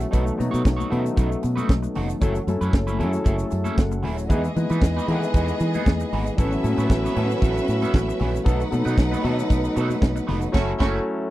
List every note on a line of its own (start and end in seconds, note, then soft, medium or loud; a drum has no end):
0.00 0.12 F#3 medium
0.00 2.18 A3 medium
0.00 0.13 B3 medium
0.00 0.11 C#4 medium
0.00 0.14 C#4 medium
0.00 0.14 E4 medium
0.00 0.11 F#4 medium
0.00 0.15 G#4 medium
0.00 0.14 A4 medium
0.00 0.14 B4 medium
0.00 muted clean electric guitar stroke soft
0.00 closed hi-hat medium
0.00 shaker medium
0.11 0.30 B1 loud
0.11 0.29 F#3 medium
0.11 0.32 A3 medium
0.11 0.29 A3 medium
0.11 2.19 B3 medium
0.11 0.29 B3 medium
0.11 0.26 D#4 medium
0.11 2.19 D#4 medium
0.11 0.29 D#4 medium
0.11 0.25 F#4 medium
0.11 0.30 A4 medium
0.11 0.24 B4 loud
0.11 kick loud
0.11 closed hi-hat medium
0.11 muted conga soft
0.11 low conga medium
0.11 shaker medium
0.25 muted clean electric guitar stroke soft
0.25 muted conga soft
0.25 shaker medium
0.38 0.48 B2 loud
0.38 0.70 F#3 medium
0.38 0.70 A3 medium
0.38 0.71 B3 medium
0.38 0.71 D#4 medium
0.38 0.71 F#4 loud
0.38 muted clean electric guitar stroke soft
0.38 closed hi-hat medium
0.38 high conga medium
0.38 shaker soft
0.51 0.61 B2 loud
0.51 0.62 A3 soft
0.51 0.63 D#4 medium
0.51 0.63 F#4 medium
0.51 0.64 C#5 medium
0.51 closed hi-hat medium
0.51 shaker medium
0.63 0.82 B1 loud
0.63 muted clean electric guitar stroke soft
0.63 kick loud
0.63 snare loud
0.63 high conga medium
0.63 shaker medium
0.77 0.89 A3 medium
0.77 0.89 D#4 medium
0.77 0.90 F#4 medium
0.77 0.91 C#5 medium
0.77 closed hi-hat soft
0.77 muted conga soft
0.77 high conga medium
0.81 shaker medium
0.90 1.09 B2 loud
0.90 1.54 F#3 medium
0.90 1.11 A3 medium
0.90 1.55 A3 medium
0.90 1.55 B3 medium
0.90 0.98 C#4 medium
0.90 1.05 D#4 medium
0.90 1.04 F#4 medium
0.90 1.55 A4 medium
0.90 1.04 B4 loud
0.90 closed hi-hat medium
0.90 low conga medium
0.98 1.58 D#4 medium
1.05 muted clean electric guitar stroke soft
1.05 closed hi-hat soft
1.05 shaker medium
1.16 1.34 B1 loud
1.16 1.37 A3 medium
1.16 1.30 D#4 loud
1.16 1.30 F#4 loud
1.16 1.29 B4 loud
1.16 kick loud
1.16 closed hi-hat medium
1.16 shaker medium
1.31 muted clean electric guitar stroke soft
1.31 shaker medium
1.43 1.61 B2 loud
1.43 muted clean electric guitar stroke soft
1.43 closed hi-hat medium
1.43 shaker medium
1.56 1.72 A3 medium
1.56 1.72 D#4 medium
1.56 1.72 F#4 medium
1.56 1.71 B4 medium
1.56 closed hi-hat soft
1.56 high conga medium
1.56 shaker medium
1.69 1.86 B1 medium
1.69 kick loud
1.69 snare loud
1.69 high conga loud
1.69 shaker medium
1.83 muted clean electric guitar stroke soft
1.83 muted conga soft
1.83 shaker medium
1.95 2.13 F1 medium
1.95 2.16 A3 medium
1.95 2.09 D#4 medium
1.95 2.08 F#4 medium
1.95 2.08 C#5 medium
1.95 snare soft
1.95 open hi-hat medium
1.95 high conga medium
1.95 low conga medium
2.09 muted clean electric guitar stroke soft
2.09 closed hi-hat soft
2.09 shaker medium
2.21 2.39 F#1 loud
2.21 2.42 F#3 loud
2.21 2.38 F#3 medium
2.21 4.28 F#3 medium
2.21 2.38 A3 medium
2.21 2.35 C#4 loud
2.21 2.38 C#4 medium
2.21 4.28 C#4 medium
2.21 2.38 E4 medium
2.21 2.35 E4 loud
2.21 4.29 E4 medium
2.21 4.28 A4 medium
2.21 2.38 A4 loud
2.21 2.34 A4 loud
2.21 kick loud
2.21 closed hi-hat medium
2.21 muted conga soft
2.21 low conga medium
2.21 shaker medium
2.35 muted clean electric guitar stroke soft
2.35 closed hi-hat soft
2.35 muted conga soft
2.35 shaker medium
2.47 2.56 F#2 medium
2.47 2.79 F#3 medium
2.47 2.80 A3 medium
2.47 2.80 C#4 medium
2.47 2.80 E4 medium
2.47 2.80 A4 medium
2.47 muted clean electric guitar stroke soft
2.47 closed hi-hat medium
2.47 high conga medium
2.47 shaker soft
2.61 2.69 F#2 loud
2.61 2.73 F#3 medium
2.61 2.73 C#4 medium
2.61 2.74 E4 medium
2.61 2.75 B4 medium
2.61 closed hi-hat medium
2.61 shaker medium
2.73 3.01 F#1 loud
2.73 muted clean electric guitar stroke soft
2.73 kick loud
2.73 snare loud
2.73 muted conga soft
2.73 high conga medium
2.73 shaker medium
2.87 2.97 F#3 medium
2.87 2.98 C#4 medium
2.87 2.99 E4 medium
2.87 3.00 B4 medium
2.87 closed hi-hat soft
2.87 muted conga soft
2.87 high conga medium
2.87 shaker medium
2.99 3.17 F#2 loud
2.99 3.19 F#3 medium
2.99 3.63 F#3 medium
2.99 3.63 A3 medium
2.99 3.13 C#4 medium
2.99 3.63 C#4 medium
2.99 3.12 E4 medium
2.99 3.63 E4 medium
2.99 3.07 G#4 medium
2.99 3.11 A4 medium
2.99 3.24 C#5 medium
2.99 closed hi-hat medium
2.99 low conga medium
3.06 3.67 A4 loud
3.12 muted clean electric guitar stroke soft
3.12 closed hi-hat soft
3.12 shaker medium
3.24 3.43 F#1 loud
3.24 3.45 F#3 medium
3.24 3.37 C#4 medium
3.24 3.37 E4 loud
3.24 3.36 A4 medium
3.24 3.74 E5 medium
3.24 kick loud
3.24 closed hi-hat medium
3.24 muted conga soft
3.24 shaker medium
3.37 muted clean electric guitar stroke soft
3.37 closed hi-hat soft
3.37 muted conga soft
3.37 shaker medium
3.51 3.69 F#2 loud
3.51 muted clean electric guitar stroke soft
3.51 closed hi-hat medium
3.51 shaker medium
3.64 3.75 F#3 medium
3.64 3.76 C#4 medium
3.64 3.77 E4 medium
3.64 3.76 A4 medium
3.64 closed hi-hat soft
3.64 high conga medium
3.64 shaker medium
3.78 4.04 F#1 loud
3.78 4.26 F#5 medium
3.78 kick loud
3.78 snare loud
3.78 muted conga soft
3.78 high conga medium
3.78 shaker medium
3.91 muted clean electric guitar stroke medium
3.91 muted conga soft
3.91 shaker medium
4.03 4.32 D#1 medium
4.03 4.24 F#3 medium
4.03 4.18 C#4 medium
4.03 4.17 E4 medium
4.03 4.18 B4 medium
4.03 snare soft
4.03 open hi-hat medium
4.03 high conga medium
4.03 low conga medium
4.18 muted clean electric guitar stroke medium
4.18 closed hi-hat soft
4.18 shaker medium
4.29 4.47 E2 loud
4.29 4.50 E3 medium
4.29 6.36 E3 medium
4.29 4.46 G#3 medium
4.29 6.36 B3 medium
4.29 4.46 B3 medium
4.29 6.34 B3 medium
4.29 4.44 B3 medium
4.29 4.46 D#4 medium
4.29 4.43 D#4 medium
4.29 4.46 E4 medium
4.29 6.36 G#4 medium
4.29 6.34 G#4 medium
4.29 4.43 G#4 loud
4.29 4.47 B4 loud
4.29 6.35 D#5 medium
4.29 6.34 D#5 medium
4.29 kick loud
4.29 closed hi-hat medium
4.29 low conga medium
4.29 shaker medium
4.44 muted clean electric guitar stroke medium
4.44 closed hi-hat soft
4.44 muted conga soft
4.44 shaker soft
4.55 4.65 E3 medium
4.55 4.87 G#3 medium
4.55 4.88 B3 medium
4.55 4.88 D#4 medium
4.55 4.88 E4 medium
4.55 4.88 B4 medium
4.55 muted clean electric guitar stroke soft
4.55 closed hi-hat medium
4.55 high conga medium
4.55 shaker soft
4.69 4.78 E3 medium
4.69 4.81 E3 medium
4.69 4.82 B3 medium
4.69 4.82 D#4 medium
4.69 4.83 B4 medium
4.69 closed hi-hat medium
4.69 shaker medium
4.82 4.99 E2 loud
4.82 muted clean electric guitar stroke medium
4.82 kick loud
4.82 snare loud
4.82 high conga medium
4.82 shaker loud
4.97 5.08 E3 medium
4.97 5.10 B3 medium
4.97 5.10 D#4 medium
4.97 5.11 B4 medium
4.97 high conga medium
4.97 shaker medium
5.08 5.25 E3 loud
5.08 5.29 E3 medium
5.08 5.71 G#3 medium
5.08 5.72 B3 medium
5.08 5.23 B3 medium
5.08 5.72 D#4 medium
5.08 5.22 D#4 medium
5.08 5.72 E4 medium
5.08 5.15 A4 medium
5.08 closed hi-hat medium
5.08 low conga medium
5.12 5.21 G#4 medium
5.12 5.75 B4 loud
5.22 muted clean electric guitar stroke soft
5.22 closed hi-hat soft
5.22 shaker medium
5.34 5.51 E2 loud
5.34 5.55 E3 medium
5.34 5.49 B3 medium
5.34 5.49 D#4 loud
5.34 5.48 G#4 medium
5.34 kick loud
5.34 closed hi-hat medium
5.34 shaker medium
5.48 muted clean electric guitar stroke medium
5.48 closed hi-hat soft
5.48 shaker medium
5.60 5.77 E3 loud
5.60 muted clean electric guitar stroke soft
5.60 closed hi-hat medium
5.60 shaker medium
5.74 5.91 E3 medium
5.74 5.90 B3 medium
5.74 5.90 D#4 medium
5.74 5.89 G#4 medium
5.74 closed hi-hat medium
5.74 high conga medium
5.74 shaker medium
5.86 6.03 E2 medium
5.86 kick loud
5.86 snare loud
5.86 high conga medium
5.86 shaker medium
5.99 muted clean electric guitar stroke soft
5.99 closed hi-hat soft
5.99 shaker medium
6.12 6.29 G#1 medium
6.12 6.33 E3 medium
6.12 6.27 B3 medium
6.12 6.27 D#4 medium
6.12 6.26 B4 medium
6.12 open hi-hat medium
6.12 high conga medium
6.12 low conga medium
6.26 muted clean electric guitar stroke soft
6.26 closed hi-hat medium
6.26 shaker medium
6.37 6.55 A1 loud
6.37 6.54 F#3 medium
6.37 6.59 F#3 medium
6.37 8.44 A3 medium
6.37 6.55 B3 medium
6.37 6.52 B3 loud
6.37 8.44 C#4 medium
6.37 6.55 C#4 medium
6.37 8.43 C#4 medium
6.37 6.51 C#4 loud
6.37 6.55 E4 medium
6.37 8.44 F#4 medium
6.37 6.55 A4 loud
6.37 6.51 A4 loud
6.37 8.43 B4 medium
6.37 8.43 E5 loud
6.37 kick loud
6.37 closed hi-hat medium
6.37 muted conga soft
6.37 low conga medium
6.37 shaker medium
6.52 muted clean electric guitar stroke soft
6.52 closed hi-hat soft
6.52 muted conga soft
6.52 shaker soft
6.63 6.73 A2 loud
6.63 6.95 F#3 medium
6.63 6.95 B3 medium
6.63 6.96 C#4 medium
6.63 6.96 E4 medium
6.63 6.96 A4 medium
6.63 muted clean electric guitar stroke soft
6.63 closed hi-hat medium
6.63 high conga medium
6.63 shaker soft
6.77 6.86 A2 loud
6.77 6.90 F#3 medium
6.77 6.90 B3 medium
6.77 6.91 C#4 medium
6.77 6.92 B4 medium
6.77 closed hi-hat medium
6.77 shaker medium
6.90 7.07 A1 loud
6.90 muted clean electric guitar stroke soft
6.90 kick loud
6.90 snare loud
6.90 high conga soft
6.90 shaker medium
7.04 7.15 F#3 soft
7.04 7.16 B3 medium
7.04 7.16 C#4 medium
7.04 7.18 B4 medium
7.04 muted conga soft
7.04 high conga medium
7.04 shaker medium
7.14 7.33 A2 loud
7.14 7.79 F#3 medium
7.14 7.37 F#3 medium
7.14 7.79 B3 medium
7.14 7.31 B3 medium
7.14 7.79 C#4 medium
7.14 7.30 C#4 medium
7.14 7.80 E4 medium
7.14 7.80 A4 medium
7.14 closed hi-hat medium
7.14 low conga medium
7.19 7.29 A4 loud
7.30 muted clean electric guitar stroke soft
7.30 closed hi-hat soft
7.30 shaker medium
7.42 7.59 A1 loud
7.42 7.63 F#3 medium
7.42 7.57 B3 medium
7.42 7.56 C#4 loud
7.42 7.56 A4 loud
7.42 kick loud
7.42 closed hi-hat medium
7.42 muted conga soft
7.42 shaker medium
7.56 muted clean electric guitar stroke soft
7.56 closed hi-hat soft
7.56 muted conga soft
7.56 shaker medium
7.68 7.85 A2 medium
7.68 muted clean electric guitar stroke soft
7.68 closed hi-hat medium
7.68 shaker medium
7.82 7.98 F#3 medium
7.82 7.98 B3 medium
7.82 7.98 C#4 medium
7.82 7.97 A4 medium
7.82 closed hi-hat medium
7.82 high conga medium
7.82 shaker medium
7.94 8.11 A1 medium
7.94 kick loud
7.94 snare loud
7.94 muted conga soft
7.94 high conga medium
7.98 shaker medium
8.08 muted clean electric guitar stroke soft
8.08 shaker medium
8.19 8.37 A#1 medium
8.19 8.40 F#3 medium
8.19 8.35 B3 medium
8.19 8.34 C#4 medium
8.19 8.34 B4 loud
8.19 snare soft
8.19 open hi-hat medium
8.19 high conga medium
8.19 low conga medium
8.34 muted clean electric guitar stroke soft
8.34 closed hi-hat soft
8.34 shaker medium
8.44 8.63 B1 loud
8.44 8.62 F#3 medium
8.44 8.67 F#3 medium
8.44 8.62 A3 medium
8.44 10.52 A3 medium
8.44 8.62 B3 medium
8.44 10.52 B3 medium
8.44 8.61 B3 loud
8.44 10.50 D#4 medium
8.44 8.62 D#4 medium
8.44 10.52 D#4 medium
8.44 8.60 D#4 loud
8.44 8.62 A4 loud
8.44 8.60 A4 loud
8.44 10.49 B4 medium
8.44 10.50 F#5 medium
8.44 kick loud
8.44 closed hi-hat medium
8.44 muted conga soft
8.44 low conga medium
8.44 shaker medium
8.60 muted clean electric guitar stroke soft
8.60 closed hi-hat soft
8.60 muted conga soft
8.60 shaker medium
8.71 8.81 B2 loud
8.71 9.03 F#3 medium
8.71 9.03 A3 medium
8.71 9.03 B3 medium
8.71 9.04 D#4 medium
8.71 9.04 A4 loud
8.71 muted clean electric guitar stroke soft
8.71 closed hi-hat medium
8.71 high conga medium
8.71 shaker soft
8.85 8.94 B2 loud
8.85 8.96 F#3 medium
8.85 8.97 B3 medium
8.85 8.97 D#4 medium
8.85 8.98 B4 medium
8.85 closed hi-hat medium
8.85 shaker medium
8.97 9.15 B1 loud
8.97 kick loud
8.97 snare loud
8.97 muted conga soft
8.97 high conga medium
8.97 shaker medium
9.11 9.23 F#3 medium
9.11 9.24 B3 medium
9.11 9.24 D#4 medium
9.11 9.26 B4 medium
9.11 high conga medium
9.11 shaker medium
9.23 9.41 B2 loud
9.23 9.87 F#3 medium
9.23 9.45 F#3 medium
9.23 9.87 A3 medium
9.23 9.87 B3 medium
9.23 9.38 B3 loud
9.23 9.88 D#4 medium
9.23 9.37 D#4 loud
9.23 9.88 A4 medium
9.23 9.37 A4 loud
9.23 closed hi-hat medium
9.23 low conga medium
9.38 muted clean electric guitar stroke soft
9.38 closed hi-hat soft
9.38 shaker medium
9.49 9.67 B1 loud
9.49 kick loud
9.49 closed hi-hat medium
9.49 muted conga soft
9.49 shaker medium
9.64 muted clean electric guitar stroke medium
9.64 shaker medium
9.76 9.93 B2 loud
9.76 9.96 F#3 medium
9.76 9.89 B3 medium
9.76 9.89 D#4 medium
9.76 9.88 A4 loud
9.76 closed hi-hat medium
9.76 shaker medium
9.89 muted clean electric guitar stroke medium
9.89 closed hi-hat medium
9.89 high conga medium
9.89 shaker medium
10.02 10.19 B1 loud
10.02 kick loud
10.02 snare loud
10.02 muted conga soft
10.02 high conga medium
10.02 shaker medium
10.16 muted clean electric guitar stroke soft
10.16 closed hi-hat soft
10.16 muted conga soft
10.16 shaker medium
10.27 10.46 F1 medium
10.27 10.48 F#3 medium
10.27 10.41 B3 loud
10.27 10.41 D#4 medium
10.27 10.40 B4 loud
10.27 snare soft
10.27 open hi-hat medium
10.27 high conga medium
10.27 low conga medium
10.41 muted clean electric guitar stroke soft
10.41 closed hi-hat soft
10.41 shaker medium
10.52 10.72 F#1 loud
10.52 10.71 F#3 loud
10.52 11.30 F#3 medium
10.52 10.71 A3 loud
10.52 10.72 A3 loud
10.52 10.71 C#4 loud
10.52 11.30 C#4 medium
10.52 10.72 C#4 loud
10.52 11.30 E4 medium
10.52 10.72 E4 loud
10.52 10.71 F#4 loud
10.52 11.30 A4 medium
10.52 10.72 A4 loud
10.52 10.73 A4 loud
10.52 kick loud
10.52 snare loud
10.52 crash medium
10.79 10.98 F#1 loud
10.79 10.98 F#3 loud
10.79 10.98 A3 loud
10.79 10.99 A3 loud
10.79 10.98 C#4 loud
10.79 10.98 C#4 medium
10.79 10.98 E4 loud
10.79 10.98 E4 medium
10.79 10.98 F#4 loud
10.79 10.98 A4 medium
10.79 kick loud
10.79 snare loud